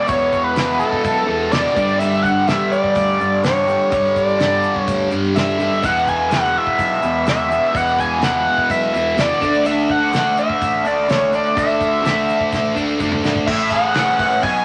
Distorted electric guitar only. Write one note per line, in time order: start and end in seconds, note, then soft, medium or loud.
0.07 0.54 E2 loud
0.07 0.55 B2 loud
0.07 0.57 E3 loud
0.55 1.51 E2 medium
0.55 1.29 B2 medium
0.55 1.26 E3 medium
1.27 1.52 B2 medium
1.27 1.53 E3 medium
1.52 1.75 E2 medium
1.52 1.75 B2 medium
1.52 1.75 E3 medium
1.75 1.99 G2 medium
1.75 2.00 D3 medium
1.75 2.02 G3 medium
2.00 2.47 G2 medium
2.00 2.48 D3 medium
2.00 2.50 G3 loud
2.47 3.42 G2 medium
2.47 3.21 D3 medium
2.47 3.18 G3 medium
3.19 3.44 D3 medium
3.19 3.45 G3 medium
3.43 3.89 G2 medium
3.43 3.68 D3 medium
3.43 3.66 G3 medium
3.67 3.91 D3 medium
3.67 3.92 G3 medium
3.91 4.37 G2 medium
3.91 4.39 D3 loud
3.91 4.40 G3 loud
4.39 5.34 G2 medium
4.39 5.13 D3 medium
4.39 5.10 G3 medium
5.11 5.35 D3 medium
5.11 5.36 G3 medium
5.35 5.81 G2 medium
5.35 5.61 D3 medium
5.35 5.58 G3 medium
5.59 5.83 D3 medium
5.59 5.82 G3 medium
5.83 6.30 E2 loud
5.83 6.30 B2 medium
5.83 6.32 E3 loud
6.30 7.24 E2 medium
6.30 7.04 B2 medium
6.30 7.01 E3 medium
7.02 7.25 B2 medium
7.02 7.28 E3 medium
7.26 7.71 E2 medium
7.26 7.50 B2 medium
7.26 7.49 E3 medium
7.49 7.73 B2 medium
7.49 7.75 E3 medium
7.73 8.19 E2 medium
7.73 8.21 B2 medium
7.73 8.23 E3 loud
8.21 9.15 E2 medium
8.21 8.95 B2 medium
8.21 8.92 E3 medium
8.93 9.16 B2 medium
8.93 9.18 E3 medium
9.16 9.39 E2 medium
9.16 9.40 B2 medium
9.16 9.42 E3 loud
9.41 9.63 D3 medium
9.41 9.65 A3 medium
9.41 9.66 D4 medium
9.64 10.11 D3 medium
9.64 10.13 A3 loud
9.64 10.14 D4 loud
10.12 11.07 D3 medium
10.12 10.86 A3 medium
10.12 10.83 D4 medium
10.84 11.09 A3 medium
10.84 11.10 D4 medium
11.08 11.55 D3 medium
11.08 11.34 A3 medium
11.08 11.31 D4 medium
11.32 11.56 A3 medium
11.32 11.57 D4 medium
11.56 12.02 D3 medium
11.56 12.04 A3 loud
11.56 12.05 D4 medium
12.03 12.98 D3 medium
12.03 12.77 A3 medium
12.03 12.74 D4 medium
12.75 13.00 A3 medium
12.75 13.01 D4 medium
12.99 13.46 D3 medium
12.99 13.25 A3 loud
12.99 13.22 D4 loud
13.23 13.47 A3 medium
13.23 13.46 D4 medium
13.48 14.42 A2 medium
13.72 14.43 G#4 medium
13.96 14.44 C#4 medium
14.20 14.43 E3 medium
14.43 14.65 B2 medium